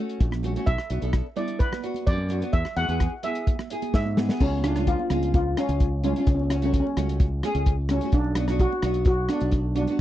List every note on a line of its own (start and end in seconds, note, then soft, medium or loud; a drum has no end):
0.00 0.25 A3 medium
0.00 0.26 C#4 medium
0.00 0.26 F#4 medium
0.09 closed hi-hat medium
0.20 0.56 A#1 medium
0.20 kick loud
0.20 closed hi-hat medium
0.31 cross-stick medium
0.31 high conga medium
0.43 0.51 A3 medium
0.43 0.51 C#4 medium
0.43 0.51 F#4 medium
0.43 closed hi-hat medium
0.43 low conga medium
0.55 0.67 A3 medium
0.55 0.68 C#4 medium
0.55 0.68 F#4 medium
0.55 closed hi-hat medium
0.66 0.76 B1 loud
0.66 1.39 E5 loud
0.66 kick loud
0.66 closed hi-hat medium
0.78 cross-stick medium
0.90 1.00 B1 medium
0.90 0.98 B3 medium
0.90 0.98 D4 medium
0.90 0.98 F#4 medium
0.90 closed hi-hat medium
1.01 1.20 B1 medium
1.01 1.23 B3 medium
1.01 1.23 D4 medium
1.01 1.24 A4 medium
1.01 closed hi-hat medium
1.13 kick medium
1.13 cross-stick medium
1.13 closed hi-hat medium
1.36 1.65 B3 medium
1.36 1.65 D4 medium
1.36 1.65 E4 medium
1.36 1.47 D5 medium
1.36 closed hi-hat medium
1.36 low conga medium
1.48 closed hi-hat medium
1.59 2.08 B4 medium
1.59 kick loud
1.59 closed hi-hat medium
1.72 cross-stick medium
1.72 high conga medium
1.82 2.11 B3 medium
1.82 2.12 D4 medium
1.82 2.12 F#4 medium
1.82 closed hi-hat medium
1.94 closed hi-hat medium
1.94 high conga medium
2.07 2.42 F#2 medium
2.07 2.51 D5 loud
2.07 kick loud
2.07 closed hi-hat medium
2.18 high conga medium
2.29 2.37 B3 medium
2.29 2.38 D4 medium
2.29 2.38 F#4 medium
2.29 closed hi-hat medium
2.29 low conga medium
2.41 2.53 B3 medium
2.41 2.54 D4 medium
2.41 2.54 F#4 medium
2.41 closed hi-hat medium
2.53 2.63 E2 medium
2.53 2.75 E5 loud
2.53 kick loud
2.53 closed hi-hat medium
2.65 cross-stick medium
2.65 low conga medium
2.77 2.86 E2 medium
2.77 2.85 B3 medium
2.77 2.85 E4 medium
2.77 2.85 G#4 medium
2.77 3.21 F#5 loud
2.77 closed hi-hat medium
2.88 3.07 E2 medium
2.88 3.10 B3 medium
2.88 3.10 E4 medium
2.88 3.11 G#4 medium
2.88 closed hi-hat medium
3.00 kick medium
3.00 cross-stick medium
3.00 closed hi-hat medium
3.23 3.52 B3 medium
3.23 3.52 E4 medium
3.23 3.53 G#4 medium
3.23 3.93 E5 medium
3.23 closed hi-hat loud
3.23 low conga medium
3.35 closed hi-hat medium
3.47 kick loud
3.47 closed hi-hat medium
3.47 high conga medium
3.59 cross-stick medium
3.59 high conga medium
3.70 3.99 B3 medium
3.70 3.99 E4 medium
3.70 4.00 G#4 medium
3.70 closed hi-hat medium
3.82 closed hi-hat medium
3.82 high conga medium
3.94 4.29 G#2 medium
3.94 4.38 E5 medium
3.94 kick medium
3.94 snare medium
4.06 high conga medium
4.17 4.41 B3 medium
4.17 4.25 B3 medium
4.17 4.25 E4 medium
4.17 4.25 G#4 medium
4.17 snare medium
4.17 high conga medium
4.17 low conga medium
4.29 4.40 B3 medium
4.29 4.41 E4 medium
4.29 4.41 G#4 medium
4.29 snare medium
4.40 4.93 C#2 medium
4.40 4.65 C#4 loud
4.40 kick loud
4.40 crash loud
4.53 high conga medium
4.64 4.71 G#3 medium
4.64 4.72 C#4 medium
4.64 4.86 D4 medium
4.64 4.72 F4 medium
4.64 cross-stick medium
4.64 closed hi-hat medium
4.76 4.97 G#3 medium
4.76 4.97 C#4 medium
4.76 4.98 F4 medium
4.76 cross-stick medium
4.76 closed hi-hat medium
4.76 low conga medium
4.87 5.34 F4 loud
4.87 kick medium
4.87 closed hi-hat medium
4.99 high conga medium
5.10 5.55 C#2 medium
5.10 5.39 G#3 medium
5.10 5.39 C#4 medium
5.10 5.39 F4 medium
5.10 cross-stick medium
5.10 closed hi-hat medium
5.10 high conga medium
5.10 low conga medium
5.23 closed hi-hat medium
5.34 5.56 F4 medium
5.34 kick loud
5.34 closed hi-hat medium
5.57 5.85 G#3 medium
5.57 5.85 C#4 medium
5.57 6.03 C#4 medium
5.57 5.86 F4 medium
5.57 cross-stick medium
5.57 closed hi-hat medium
5.69 6.13 C#2 medium
5.69 closed hi-hat medium
5.80 kick loud
5.80 closed hi-hat medium
6.03 6.11 G#3 medium
6.03 6.11 C#4 medium
6.03 6.11 F4 medium
6.03 closed hi-hat medium
6.03 low conga medium
6.14 6.27 G#3 medium
6.14 6.19 C#4 medium
6.14 6.28 C#4 medium
6.14 closed hi-hat medium
6.18 6.26 C#4 medium
6.18 6.28 F4 medium
6.27 6.80 C#2 loud
6.27 6.34 C#4 medium
6.27 kick loud
6.27 closed hi-hat medium
6.35 6.41 C#4 medium
6.40 6.49 C#4 soft
6.40 high conga medium
6.50 6.57 A3 medium
6.50 6.56 C#4 medium
6.50 6.58 C#4 medium
6.50 6.58 F#4 medium
6.50 cross-stick medium
6.50 closed hi-hat loud
6.57 6.64 C#4 soft
6.62 6.83 A3 medium
6.62 6.83 C#4 medium
6.62 6.84 F#4 medium
6.62 closed hi-hat medium
6.62 low conga medium
6.66 6.71 C#4 medium
6.72 6.79 C#4 medium
6.72 kick medium
6.72 closed hi-hat medium
6.80 6.86 C#4 medium
6.87 high conga medium
6.96 7.41 C#2 medium
6.96 7.25 A3 medium
6.96 7.25 C#4 medium
6.96 7.26 F#4 medium
6.96 cross-stick medium
6.96 closed hi-hat medium
6.96 high conga medium
6.96 low conga medium
7.09 closed hi-hat medium
7.20 kick loud
7.20 closed hi-hat medium
7.43 7.72 A3 loud
7.43 7.72 C#4 medium
7.43 7.72 G#4 loud
7.43 cross-stick medium
7.43 closed hi-hat medium
7.55 7.99 C#2 medium
7.55 closed hi-hat medium
7.66 kick loud
7.66 closed hi-hat medium
7.89 7.97 A3 medium
7.89 7.97 C#4 medium
7.89 8.01 C#4 medium
7.89 7.98 F#4 medium
7.89 cross-stick medium
7.89 closed hi-hat medium
7.89 low conga medium
8.01 8.13 A3 medium
8.01 8.14 C#4 medium
8.01 8.14 F#4 medium
8.01 closed hi-hat medium
8.12 8.65 B1 medium
8.12 8.62 D4 loud
8.12 kick loud
8.12 closed hi-hat medium
8.25 high conga medium
8.35 8.43 B3 medium
8.35 8.44 D4 medium
8.35 8.44 F#4 medium
8.35 cross-stick loud
8.35 closed hi-hat medium
8.48 8.69 B3 medium
8.48 8.69 D4 medium
8.48 8.70 F#4 loud
8.48 cross-stick medium
8.48 closed hi-hat medium
8.48 low conga medium
8.59 9.06 F#4 loud
8.59 kick loud
8.59 closed hi-hat medium
8.73 high conga medium
8.82 9.27 B1 medium
8.82 9.11 B3 medium
8.82 9.11 D4 medium
8.82 9.11 F#4 medium
8.82 cross-stick medium
8.82 closed hi-hat medium
8.82 high conga medium
8.82 low conga medium
8.94 closed hi-hat medium
9.05 9.18 F#4 loud
9.05 kick loud
9.05 closed hi-hat medium
9.29 9.58 B3 medium
9.29 9.74 D4 medium
9.29 9.58 D4 medium
9.29 9.58 F#4 medium
9.29 cross-stick medium
9.29 closed hi-hat medium
9.40 9.85 B1 medium
9.40 closed hi-hat medium
9.51 kick loud
9.51 closed hi-hat medium
9.75 9.83 B3 medium
9.75 9.83 D4 medium
9.75 9.84 F#4 medium
9.75 closed hi-hat medium
9.75 low conga medium
9.84 9.99 B3 medium
9.84 9.90 D4 medium
9.84 closed hi-hat medium
9.88 10.00 D4 medium
9.88 9.98 D4 medium
9.88 10.00 F#4 medium